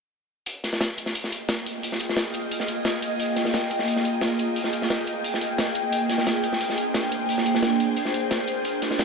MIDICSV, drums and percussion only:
0, 0, Header, 1, 2, 480
1, 0, Start_track
1, 0, Tempo, 340909
1, 663, Time_signature, 4, 2, 24, 8
1, 12735, End_track
2, 0, Start_track
2, 0, Title_t, "Drums"
2, 652, Note_on_c, 9, 42, 89
2, 663, Note_off_c, 9, 42, 0
2, 663, Note_on_c, 9, 42, 80
2, 804, Note_off_c, 9, 42, 0
2, 898, Note_on_c, 9, 38, 39
2, 901, Note_on_c, 9, 42, 63
2, 904, Note_off_c, 9, 42, 0
2, 904, Note_on_c, 9, 42, 91
2, 1024, Note_off_c, 9, 38, 0
2, 1024, Note_on_c, 9, 38, 46
2, 1044, Note_off_c, 9, 42, 0
2, 1134, Note_off_c, 9, 38, 0
2, 1134, Note_on_c, 9, 38, 107
2, 1137, Note_on_c, 9, 42, 78
2, 1145, Note_off_c, 9, 42, 0
2, 1145, Note_on_c, 9, 42, 79
2, 1275, Note_off_c, 9, 38, 0
2, 1286, Note_off_c, 9, 42, 0
2, 1376, Note_on_c, 9, 42, 68
2, 1384, Note_off_c, 9, 42, 0
2, 1384, Note_on_c, 9, 42, 90
2, 1495, Note_on_c, 9, 38, 50
2, 1525, Note_off_c, 9, 42, 0
2, 1621, Note_on_c, 9, 42, 88
2, 1624, Note_off_c, 9, 42, 0
2, 1624, Note_on_c, 9, 42, 77
2, 1636, Note_off_c, 9, 38, 0
2, 1746, Note_on_c, 9, 38, 37
2, 1765, Note_off_c, 9, 42, 0
2, 1863, Note_on_c, 9, 42, 94
2, 1866, Note_off_c, 9, 42, 0
2, 1866, Note_on_c, 9, 42, 68
2, 1887, Note_off_c, 9, 38, 0
2, 2007, Note_off_c, 9, 42, 0
2, 2093, Note_on_c, 9, 38, 104
2, 2103, Note_on_c, 9, 42, 75
2, 2107, Note_off_c, 9, 42, 0
2, 2107, Note_on_c, 9, 42, 82
2, 2234, Note_off_c, 9, 38, 0
2, 2248, Note_off_c, 9, 42, 0
2, 2344, Note_on_c, 9, 42, 91
2, 2356, Note_off_c, 9, 42, 0
2, 2356, Note_on_c, 9, 42, 65
2, 2497, Note_off_c, 9, 42, 0
2, 2582, Note_on_c, 9, 42, 79
2, 2589, Note_off_c, 9, 42, 0
2, 2589, Note_on_c, 9, 42, 89
2, 2707, Note_on_c, 9, 38, 44
2, 2730, Note_off_c, 9, 42, 0
2, 2811, Note_on_c, 9, 42, 65
2, 2822, Note_off_c, 9, 42, 0
2, 2822, Note_on_c, 9, 42, 89
2, 2848, Note_off_c, 9, 38, 0
2, 2949, Note_on_c, 9, 38, 49
2, 2963, Note_off_c, 9, 42, 0
2, 3050, Note_off_c, 9, 38, 0
2, 3050, Note_on_c, 9, 38, 110
2, 3062, Note_on_c, 9, 42, 76
2, 3063, Note_off_c, 9, 42, 0
2, 3063, Note_on_c, 9, 42, 76
2, 3191, Note_off_c, 9, 38, 0
2, 3204, Note_off_c, 9, 42, 0
2, 3291, Note_on_c, 9, 42, 65
2, 3302, Note_off_c, 9, 42, 0
2, 3302, Note_on_c, 9, 42, 88
2, 3442, Note_off_c, 9, 42, 0
2, 3540, Note_on_c, 9, 42, 76
2, 3543, Note_off_c, 9, 42, 0
2, 3543, Note_on_c, 9, 42, 87
2, 3659, Note_on_c, 9, 38, 42
2, 3683, Note_off_c, 9, 42, 0
2, 3779, Note_on_c, 9, 42, 90
2, 3781, Note_off_c, 9, 42, 0
2, 3781, Note_on_c, 9, 42, 65
2, 3799, Note_off_c, 9, 38, 0
2, 3922, Note_off_c, 9, 42, 0
2, 4012, Note_on_c, 9, 38, 107
2, 4018, Note_on_c, 9, 42, 74
2, 4023, Note_off_c, 9, 42, 0
2, 4023, Note_on_c, 9, 42, 89
2, 4153, Note_off_c, 9, 38, 0
2, 4163, Note_off_c, 9, 42, 0
2, 4257, Note_on_c, 9, 42, 65
2, 4258, Note_off_c, 9, 42, 0
2, 4258, Note_on_c, 9, 42, 90
2, 4399, Note_off_c, 9, 42, 0
2, 4500, Note_on_c, 9, 42, 74
2, 4504, Note_off_c, 9, 42, 0
2, 4504, Note_on_c, 9, 42, 80
2, 4644, Note_off_c, 9, 42, 0
2, 4734, Note_on_c, 9, 38, 40
2, 4737, Note_on_c, 9, 42, 61
2, 4740, Note_off_c, 9, 42, 0
2, 4740, Note_on_c, 9, 42, 85
2, 4860, Note_off_c, 9, 38, 0
2, 4860, Note_on_c, 9, 38, 51
2, 4881, Note_off_c, 9, 42, 0
2, 4980, Note_on_c, 9, 42, 76
2, 4983, Note_off_c, 9, 38, 0
2, 4983, Note_on_c, 9, 38, 109
2, 4984, Note_off_c, 9, 42, 0
2, 4984, Note_on_c, 9, 42, 86
2, 5124, Note_off_c, 9, 38, 0
2, 5125, Note_off_c, 9, 42, 0
2, 5219, Note_on_c, 9, 42, 67
2, 5221, Note_off_c, 9, 42, 0
2, 5221, Note_on_c, 9, 42, 85
2, 5339, Note_on_c, 9, 38, 44
2, 5362, Note_off_c, 9, 42, 0
2, 5458, Note_on_c, 9, 42, 83
2, 5462, Note_off_c, 9, 42, 0
2, 5462, Note_on_c, 9, 42, 72
2, 5480, Note_off_c, 9, 38, 0
2, 5580, Note_on_c, 9, 38, 37
2, 5602, Note_off_c, 9, 42, 0
2, 5701, Note_on_c, 9, 42, 85
2, 5705, Note_off_c, 9, 42, 0
2, 5705, Note_on_c, 9, 42, 60
2, 5721, Note_off_c, 9, 38, 0
2, 5846, Note_off_c, 9, 42, 0
2, 5934, Note_on_c, 9, 38, 108
2, 5941, Note_on_c, 9, 42, 71
2, 6074, Note_off_c, 9, 38, 0
2, 6082, Note_off_c, 9, 42, 0
2, 6177, Note_on_c, 9, 42, 67
2, 6184, Note_off_c, 9, 42, 0
2, 6184, Note_on_c, 9, 42, 87
2, 6325, Note_off_c, 9, 42, 0
2, 6423, Note_on_c, 9, 42, 75
2, 6427, Note_off_c, 9, 42, 0
2, 6427, Note_on_c, 9, 42, 83
2, 6534, Note_on_c, 9, 38, 43
2, 6568, Note_off_c, 9, 42, 0
2, 6658, Note_on_c, 9, 42, 66
2, 6663, Note_off_c, 9, 42, 0
2, 6663, Note_on_c, 9, 42, 83
2, 6675, Note_off_c, 9, 38, 0
2, 6789, Note_on_c, 9, 38, 44
2, 6804, Note_off_c, 9, 42, 0
2, 6903, Note_off_c, 9, 38, 0
2, 6903, Note_on_c, 9, 38, 110
2, 6904, Note_on_c, 9, 42, 71
2, 6905, Note_off_c, 9, 42, 0
2, 6905, Note_on_c, 9, 42, 74
2, 7044, Note_off_c, 9, 38, 0
2, 7046, Note_off_c, 9, 42, 0
2, 7134, Note_on_c, 9, 42, 60
2, 7143, Note_off_c, 9, 42, 0
2, 7143, Note_on_c, 9, 42, 83
2, 7284, Note_off_c, 9, 42, 0
2, 7384, Note_on_c, 9, 42, 72
2, 7391, Note_off_c, 9, 42, 0
2, 7391, Note_on_c, 9, 42, 88
2, 7518, Note_on_c, 9, 38, 45
2, 7532, Note_off_c, 9, 42, 0
2, 7623, Note_on_c, 9, 42, 86
2, 7632, Note_off_c, 9, 42, 0
2, 7632, Note_on_c, 9, 42, 65
2, 7659, Note_off_c, 9, 38, 0
2, 7773, Note_off_c, 9, 42, 0
2, 7863, Note_on_c, 9, 38, 110
2, 7863, Note_on_c, 9, 42, 68
2, 7866, Note_off_c, 9, 42, 0
2, 7866, Note_on_c, 9, 42, 78
2, 8003, Note_off_c, 9, 38, 0
2, 8006, Note_off_c, 9, 42, 0
2, 8096, Note_on_c, 9, 42, 67
2, 8101, Note_off_c, 9, 42, 0
2, 8101, Note_on_c, 9, 42, 87
2, 8241, Note_off_c, 9, 42, 0
2, 8342, Note_on_c, 9, 42, 74
2, 8344, Note_off_c, 9, 42, 0
2, 8344, Note_on_c, 9, 42, 84
2, 8485, Note_off_c, 9, 42, 0
2, 8582, Note_on_c, 9, 38, 40
2, 8582, Note_on_c, 9, 42, 85
2, 8593, Note_off_c, 9, 42, 0
2, 8593, Note_on_c, 9, 42, 72
2, 8702, Note_off_c, 9, 38, 0
2, 8702, Note_on_c, 9, 38, 47
2, 8734, Note_off_c, 9, 42, 0
2, 8822, Note_on_c, 9, 42, 74
2, 8825, Note_off_c, 9, 38, 0
2, 8825, Note_on_c, 9, 38, 106
2, 8829, Note_off_c, 9, 42, 0
2, 8829, Note_on_c, 9, 42, 78
2, 8966, Note_off_c, 9, 38, 0
2, 8970, Note_off_c, 9, 42, 0
2, 9061, Note_on_c, 9, 42, 63
2, 9063, Note_off_c, 9, 42, 0
2, 9063, Note_on_c, 9, 42, 83
2, 9189, Note_on_c, 9, 38, 52
2, 9204, Note_off_c, 9, 42, 0
2, 9304, Note_on_c, 9, 42, 72
2, 9307, Note_off_c, 9, 42, 0
2, 9307, Note_on_c, 9, 42, 83
2, 9330, Note_off_c, 9, 38, 0
2, 9429, Note_on_c, 9, 38, 39
2, 9447, Note_off_c, 9, 42, 0
2, 9543, Note_on_c, 9, 42, 85
2, 9546, Note_off_c, 9, 42, 0
2, 9546, Note_on_c, 9, 42, 61
2, 9569, Note_off_c, 9, 38, 0
2, 9687, Note_off_c, 9, 42, 0
2, 9777, Note_on_c, 9, 38, 109
2, 9782, Note_on_c, 9, 42, 69
2, 9783, Note_off_c, 9, 42, 0
2, 9783, Note_on_c, 9, 42, 85
2, 9917, Note_off_c, 9, 38, 0
2, 9923, Note_off_c, 9, 42, 0
2, 10021, Note_on_c, 9, 42, 84
2, 10026, Note_off_c, 9, 42, 0
2, 10026, Note_on_c, 9, 42, 60
2, 10167, Note_off_c, 9, 42, 0
2, 10262, Note_on_c, 9, 42, 75
2, 10276, Note_off_c, 9, 42, 0
2, 10276, Note_on_c, 9, 42, 86
2, 10390, Note_on_c, 9, 38, 45
2, 10417, Note_off_c, 9, 42, 0
2, 10502, Note_on_c, 9, 42, 89
2, 10505, Note_off_c, 9, 42, 0
2, 10505, Note_on_c, 9, 42, 63
2, 10531, Note_off_c, 9, 38, 0
2, 10625, Note_on_c, 9, 38, 51
2, 10645, Note_off_c, 9, 42, 0
2, 10736, Note_off_c, 9, 38, 0
2, 10736, Note_on_c, 9, 38, 108
2, 10741, Note_on_c, 9, 42, 74
2, 10743, Note_off_c, 9, 42, 0
2, 10743, Note_on_c, 9, 42, 87
2, 10877, Note_off_c, 9, 38, 0
2, 10884, Note_off_c, 9, 42, 0
2, 10983, Note_on_c, 9, 42, 89
2, 10986, Note_off_c, 9, 42, 0
2, 10986, Note_on_c, 9, 42, 67
2, 11127, Note_off_c, 9, 42, 0
2, 11215, Note_on_c, 9, 42, 79
2, 11222, Note_off_c, 9, 42, 0
2, 11222, Note_on_c, 9, 42, 74
2, 11339, Note_on_c, 9, 38, 43
2, 11363, Note_off_c, 9, 42, 0
2, 11462, Note_on_c, 9, 42, 91
2, 11464, Note_off_c, 9, 42, 0
2, 11464, Note_on_c, 9, 42, 63
2, 11480, Note_off_c, 9, 38, 0
2, 11605, Note_off_c, 9, 42, 0
2, 11699, Note_on_c, 9, 38, 113
2, 11702, Note_on_c, 9, 42, 72
2, 11703, Note_off_c, 9, 42, 0
2, 11703, Note_on_c, 9, 42, 89
2, 11840, Note_off_c, 9, 38, 0
2, 11844, Note_off_c, 9, 42, 0
2, 11933, Note_on_c, 9, 42, 69
2, 11943, Note_off_c, 9, 42, 0
2, 11943, Note_on_c, 9, 42, 90
2, 12084, Note_off_c, 9, 42, 0
2, 12177, Note_on_c, 9, 42, 84
2, 12180, Note_off_c, 9, 42, 0
2, 12180, Note_on_c, 9, 42, 79
2, 12321, Note_off_c, 9, 42, 0
2, 12419, Note_on_c, 9, 42, 92
2, 12421, Note_off_c, 9, 42, 0
2, 12421, Note_on_c, 9, 38, 40
2, 12421, Note_on_c, 9, 42, 68
2, 12541, Note_off_c, 9, 38, 0
2, 12541, Note_on_c, 9, 38, 51
2, 12562, Note_off_c, 9, 42, 0
2, 12655, Note_on_c, 9, 42, 81
2, 12662, Note_off_c, 9, 38, 0
2, 12662, Note_off_c, 9, 42, 0
2, 12662, Note_on_c, 9, 38, 107
2, 12662, Note_on_c, 9, 42, 77
2, 12735, Note_off_c, 9, 38, 0
2, 12735, Note_off_c, 9, 42, 0
2, 12735, End_track
0, 0, End_of_file